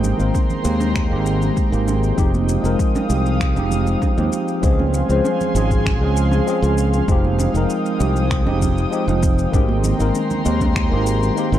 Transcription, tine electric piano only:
0.00 0.15 D#3 medium
0.00 0.16 G#3 medium
0.00 0.16 A#3 medium
0.00 0.17 C4 medium
0.00 0.17 G4 loud
0.17 0.61 D#3 medium
0.17 0.61 G#3 medium
0.17 0.62 A#3 medium
0.17 0.62 C4 medium
0.22 0.63 A#4 medium
0.63 1.07 D#3 medium
0.63 1.07 G#3 medium
0.63 1.08 A#3 medium
0.63 1.08 C4 medium
0.63 1.09 G4 medium
1.09 1.68 D#3 medium
1.09 1.68 G#3 medium
1.09 1.69 A#3 medium
1.09 1.69 C4 medium
1.13 1.70 G4 loud
1.70 2.14 D#3 medium
1.70 2.14 G#3 medium
1.70 2.15 A#3 medium
1.70 2.15 C4 medium
1.70 2.16 G4 medium
2.15 2.59 F3 loud
2.15 2.60 G#3 medium
2.15 2.61 C4 medium
2.15 2.61 D#4 medium
2.19 2.61 G4 loud
2.62 3.05 F3 medium
2.62 3.06 G#3 medium
2.62 3.06 C4 medium
2.62 3.07 D#4 medium
2.66 3.07 A#4 medium
3.08 3.52 F3 medium
3.08 3.52 G#3 medium
3.08 3.53 C4 medium
3.08 3.53 D#4 medium
3.12 3.54 G4 medium
3.55 4.13 F3 medium
3.55 4.14 G#3 medium
3.55 4.14 C4 medium
3.55 4.15 D#4 medium
3.59 4.15 G4 loud
4.16 4.59 F3 medium
4.16 4.60 G#3 medium
4.16 4.60 C4 medium
4.16 4.61 D#4 medium
4.20 4.61 G4 loud
4.62 5.05 F3 medium
4.62 5.06 G#3 medium
4.62 5.06 C4 medium
4.62 5.07 C#4 medium
4.62 5.07 G#4 loud
5.09 5.51 F3 medium
5.09 5.52 G#3 medium
5.09 5.52 C4 medium
5.09 5.52 C#4 medium
5.09 5.53 C5 medium
5.54 5.97 F3 medium
5.54 5.98 G#3 medium
5.54 5.98 C4 medium
5.54 5.99 C#4 medium
5.54 5.99 G#4 medium
6.01 6.44 F3 medium
6.01 6.44 G#3 medium
6.01 6.45 C4 medium
6.01 6.45 C#4 medium
6.05 6.46 G#4 loud
6.46 6.58 F3 loud
6.46 6.59 G#3 medium
6.46 6.59 C4 medium
6.46 6.60 C#4 medium
6.46 6.60 G#4 loud
6.62 7.05 F3 medium
6.62 7.05 G#3 medium
6.62 7.05 C4 medium
6.62 7.06 C#4 medium
6.62 7.06 F4 medium
7.08 7.51 F3 loud
7.08 7.51 G#3 medium
7.08 7.51 C4 medium
7.08 7.52 D#4 medium
7.12 7.53 G4 loud
7.54 7.96 F3 medium
7.54 7.97 G#3 medium
7.54 7.97 C4 medium
7.54 7.98 D#4 medium
7.54 7.98 A#4 medium
7.99 8.42 F3 medium
7.99 8.42 G#3 medium
7.99 8.43 C4 medium
7.99 8.43 D#4 medium
7.99 8.44 G4 medium
8.45 8.88 F3 medium
8.45 8.89 G#3 medium
8.45 8.89 C4 medium
8.45 8.90 D#4 medium
8.45 8.90 G4 loud
8.90 9.03 F3 medium
8.90 9.04 G#3 medium
8.90 9.04 C4 medium
8.90 9.05 D#4 medium
8.95 9.05 G4 loud
9.06 9.49 F3 medium
9.06 9.49 G#3 medium
9.06 9.50 C4 medium
9.06 9.50 D#4 medium
9.06 9.51 F4 medium
9.51 9.95 D#3 loud
9.51 9.95 G#3 medium
9.51 9.96 A#3 medium
9.51 9.96 C4 medium
9.51 9.97 G4 loud
9.98 10.41 D#3 medium
9.98 10.41 G#3 medium
9.98 10.42 A#3 medium
9.98 10.42 C4 medium
9.98 10.43 A#4 medium
10.44 10.87 D#3 medium
10.44 10.87 G#3 medium
10.44 10.88 A#3 medium
10.44 10.88 C4 medium
10.44 10.89 G4 medium
10.90 11.33 D#3 loud
10.90 11.34 G#3 medium
10.90 11.34 A#3 medium
10.90 11.35 C4 medium
10.90 11.35 G4 loud
11.35 11.48 D#3 medium
11.35 11.48 G#3 medium
11.35 11.49 A#3 medium
11.35 11.50 C4 medium
11.35 11.50 G4 loud
11.51 11.59 D#3 medium
11.51 11.59 G#3 medium
11.51 11.59 A#3 medium
11.51 11.59 C4 medium
11.51 11.59 F4 medium

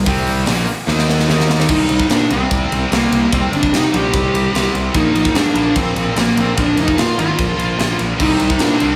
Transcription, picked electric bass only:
0.06 0.44 C2 medium
0.46 0.65 A#1 loud
0.87 1.25 D#2 loud
1.28 1.66 D#2 loud
1.69 1.82 C2 loud
1.90 2.03 C2 medium
2.10 2.23 A#2 loud
2.30 2.44 C2 medium
2.51 2.64 C2 medium
2.71 2.84 C2 loud
2.91 3.05 C2 loud
3.11 3.25 C2 medium
3.33 3.46 C2 medium
3.52 3.65 G1 medium
3.73 3.86 C3 loud
3.94 4.07 A#1 medium
4.14 4.27 C2 loud
4.34 4.47 C2 loud
4.53 4.67 C2 loud
4.74 4.87 C2 loud
4.94 5.08 A#1 loud
5.14 5.28 A#1 medium
5.34 5.48 G#2 loud
5.54 5.68 A#1 medium
5.76 5.89 A#1 loud
5.95 6.09 A#1 medium
6.16 6.30 A#1 medium
6.37 6.50 A#1 loud
6.58 6.71 A#1 loud
6.77 6.91 F1 medium
6.97 7.11 A#2 loud
7.17 7.31 G#1 medium
7.38 7.52 A#1 loud
7.58 7.71 A#1 loud
7.78 7.92 A#1 loud
7.99 8.12 A#1 loud
8.20 8.33 C2 loud
8.41 8.54 C2 medium
8.60 8.74 A#2 loud
8.81 8.95 C2 loud

